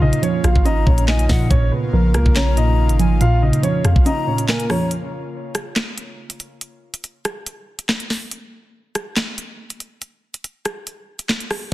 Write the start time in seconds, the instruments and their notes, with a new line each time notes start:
Already playing: 808-style bass A#1, synth pluck A#2 F3, analog synth pad C#3 A#3 F4
0.01 synth pluck C#3, grand piano D#4 D#5
0.13 closed hi-hat
0.22 synth pluck F3, grand piano C#4 C#5, closed hi-hat
0.44 808-style bass A#1, grand piano F4 F5, cross-stick, closed hi-hat
0.56 808-style bass G#1, kick
0.65 synth pluck C#4, grand piano D#4 D#5, flute A#5, closed hi-hat
0.87 808-style bass A#1, synth pluck A#2, grand piano C#4 C#5, kick
0.98 closed hi-hat
1.08 grand piano D#4 D#5, flute G#5, snare, clap
1.19 closed hi-hat
1.29 808-style bass A#2, synth pluck F3, flute F#5, kick, snare, open hi-hat
1.51 808-style bass A#1, synth pluck A#2, analog synth pad C#3 A#3 F4, grand piano C#4 C#5, kick, closed hi-hat
1.72 synth pluck C#3, grand piano B3 B4
1.93 808-style bass A#1, synth pluck F3, grand piano A#3 A#4
2.14 808-style bass C#2, grand piano A#3 A#4, cross-stick, closed hi-hat
2.26 808-style bass A#1, kick
2.36 synth pluck C#4, grand piano C#4 C#5, flute A#5, snare, clap, closed hi-hat
2.57 synth pluck A#2, grand piano D#4 D#5, closed hi-hat
2.89 808-style bass G#1, closed hi-hat
2.99 synth pluck F3, flute G#5, closed hi-hat
3.21 808-style bass A#1, synth pluck A#2, grand piano F4 F5, closed hi-hat
3.42 synth pluck C#3, grand piano D#4 D#5
3.53 closed hi-hat
3.63 synth pluck F3, grand piano C#4 C#5, closed hi-hat
3.84 808-style bass F2, grand piano F4 F5, cross-stick, closed hi-hat
3.96 808-style bass A#1, kick
4.06 synth pluck C#4, grand piano D#4 D#5, flute A#5, closed hi-hat
4.27 synth pluck A#2, grand piano C#4 C#5
4.38 closed hi-hat
4.48 grand piano A#3 A#4, flute G#5, snare, clap
4.60 closed hi-hat
4.70 synth pluck F3, grand piano C#4 C#5, flute A#5, cross-stick, open hi-hat
4.91 closed hi-hat
5.55 cross-stick, closed hi-hat
5.76 snare, clap, closed hi-hat
5.98 closed hi-hat
6.30 closed hi-hat
6.40 closed hi-hat
6.61 closed hi-hat
6.94 closed hi-hat
7.04 closed hi-hat
7.25 cross-stick, closed hi-hat
7.46 closed hi-hat
7.79 closed hi-hat
7.89 snare, clap
8.00 closed hi-hat
8.10 snare, open hi-hat
8.31 closed hi-hat
8.95 cross-stick, closed hi-hat
9.17 snare, clap, closed hi-hat
9.38 closed hi-hat
9.70 closed hi-hat
9.80 closed hi-hat
10.02 closed hi-hat
10.34 closed hi-hat
10.44 closed hi-hat
10.65 cross-stick, closed hi-hat
10.87 closed hi-hat
11.19 closed hi-hat
11.29 snare, clap
11.40 closed hi-hat
11.51 cross-stick, open hi-hat